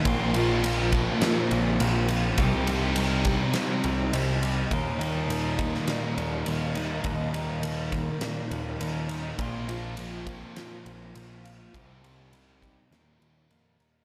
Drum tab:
RD |x-x-x-x-x-x-x-x-|x-x-x-x-x-x-x-x-|x-x-x-x-x-x-x-x-|x-x-x-x-x-x-x-x-|
SD |--------o-------|--------o-------|-------oo-------|--------o-------|
BD |o-----o---------|o-----o---------|o-----o---------|o-----o---------|

RD |x-x-x-x-x-x-x-x-|x-x-x-x-x-x-x-x-|
SD |--------o-------|--------o-------|
BD |o-----o---------|o-----o---------|